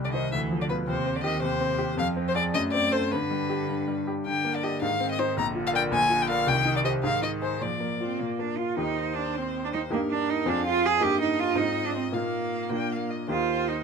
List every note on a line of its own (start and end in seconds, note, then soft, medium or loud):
0.00 0.30 C2 soft
0.00 0.16 D3 medium
0.00 0.24 G3 soft
0.05 0.08 D5 medium
0.13 0.32 D#3 soft
0.13 0.30 D#4 soft
0.13 0.30 C5 soft
0.13 0.31 D#5 medium
0.32 0.86 D2 soft
0.32 0.62 E3 medium
0.32 0.40 E5 medium
0.51 0.80 F3 soft
0.60 0.71 D3 medium
0.60 0.65 D5 medium
0.69 0.86 B2 medium
0.69 0.86 F4 soft
0.69 0.77 B4 medium
0.69 0.86 B4 soft
0.87 1.41 D#2 soft
0.87 1.17 C3 medium
0.87 1.17 C5 medium
1.06 1.35 C4 soft
1.16 1.26 D3 medium
1.16 1.23 D5 medium
1.24 1.42 D#3 medium
1.24 1.53 G4 soft
1.24 1.42 D#5 medium
1.42 1.96 D#2 soft
1.42 1.96 C3 medium
1.42 1.97 C5 medium
1.61 1.90 C4 soft
1.79 1.97 G4 soft
1.97 2.52 F2 medium
1.97 2.55 F3 medium
1.97 2.07 F5 medium
2.16 2.46 C4 soft
2.28 2.35 C5 medium
2.35 2.52 G#4 soft
2.35 2.52 D5 medium
2.35 2.43 D5 medium
2.54 3.09 F#2 medium
2.54 3.13 A3 medium
2.54 2.62 D#5 medium
2.72 3.04 C4 soft
2.72 2.93 D5 medium
2.92 3.09 A4 soft
2.92 3.13 C5 medium
2.92 3.09 C5 soft
3.11 3.67 G2 soft
3.11 4.07 D3 medium
3.11 4.07 B4 medium
3.31 3.61 G3 soft
3.50 3.80 G4 soft
3.69 4.24 G2 soft
3.88 4.18 G3 soft
4.07 4.26 G4 soft
4.26 4.81 G2 soft
4.26 4.84 D3 soft
4.26 4.56 G5 medium
4.45 4.75 A#3 soft
4.55 4.65 D5 medium
4.64 4.80 G4 soft
4.64 4.81 D5 soft
4.64 4.81 D#5 medium
4.82 5.36 G#2 medium
4.82 5.39 D#3 soft
4.82 5.09 F5 medium
5.00 5.30 C4 soft
5.11 5.20 D#5 medium
5.19 5.36 D#4 soft
5.19 5.37 C5 medium
5.19 5.36 C5 soft
5.37 5.90 A#1 medium
5.37 6.48 D3 medium
5.37 5.46 A#5 medium
5.55 5.85 F4 soft
5.67 5.70 F5 medium
5.73 5.90 A#4 soft
5.73 5.90 D5 medium
5.73 5.82 G5 medium
5.91 6.46 A#1 medium
5.91 6.23 G#5 medium
6.09 6.40 F4 soft
6.22 6.29 G5 medium
6.29 6.46 A#4 soft
6.29 6.46 D5 medium
6.29 6.49 F5 medium
6.47 7.02 C2 medium
6.47 7.00 D#3 medium
6.47 6.76 G5 medium
6.66 6.96 D#4 soft
6.76 6.80 D5 medium
6.84 7.02 G4 soft
6.84 7.02 C5 soft
6.84 6.93 D#5 medium
7.03 7.60 G#2 medium
7.03 7.63 D#3 soft
7.03 7.22 F5 medium
7.22 7.54 D#4 soft
7.22 7.30 D#5 medium
7.42 7.60 G#4 soft
7.42 7.60 C5 soft
7.42 7.63 C5 medium
7.61 8.19 A#2 soft
7.61 8.01 F3 soft
7.61 8.21 D5 medium
7.80 8.12 A#3 soft
8.00 8.21 C4 soft
8.00 8.32 F4 soft
8.19 8.77 A#2 soft
8.19 8.41 A#3 soft
8.39 8.71 A#3 soft
8.39 8.59 D4 soft
8.58 8.77 F4 medium
8.58 8.79 F4 soft
8.77 9.87 D#2 soft
8.77 9.87 A#3 soft
8.77 9.87 D#4 soft
8.77 9.18 D#4 medium
8.77 9.88 G4 soft
8.77 9.92 C5 soft
9.16 9.37 D4 medium
9.35 9.63 C4 medium
9.64 9.68 D4 medium
9.73 9.81 D#4 medium
9.90 10.45 G2 soft
9.90 10.45 A#3 soft
9.90 10.00 A#3 medium
9.90 10.45 D#4 soft
9.90 10.45 G4 soft
9.90 10.48 A#4 soft
10.11 10.32 D4 medium
10.30 10.50 D#4 medium
10.45 10.99 F2 soft
10.45 11.00 C4 soft
10.45 10.66 D4 medium
10.45 11.00 F4 soft
10.45 11.00 G#4 soft
10.45 11.01 F5 medium
10.66 10.87 F4 medium
10.86 11.04 G#4 medium
11.00 11.55 G2 soft
11.00 11.55 A#3 soft
11.00 11.54 D#4 soft
11.00 11.55 G4 soft
11.00 11.20 G4 medium
11.00 12.15 D#5 medium
11.21 11.41 D#4 medium
11.39 11.59 F4 medium
11.55 12.11 G#2 soft
11.55 12.11 C4 soft
11.55 12.11 D#4 soft
11.55 11.88 D#4 medium
11.55 12.12 F4 soft
11.86 11.94 D4 medium
11.95 12.03 C4 medium
12.12 12.68 A#2 soft
12.12 12.69 A#3 soft
12.12 13.08 A#3 medium
12.12 12.69 D#4 soft
12.12 12.69 F4 soft
12.12 12.67 F5 soft
12.69 13.27 A#2 soft
12.69 13.27 A#3 soft
12.69 13.27 D4 soft
12.69 13.27 F4 soft
12.69 12.93 G5 medium
12.92 13.12 F5 soft
13.10 13.29 D#5 soft
13.28 13.83 D#2 soft
13.28 13.84 A#3 soft
13.28 13.84 D#4 soft
13.28 13.70 F4 medium
13.28 13.84 G4 soft
13.28 13.84 C5 soft
13.68 13.84 D#4 medium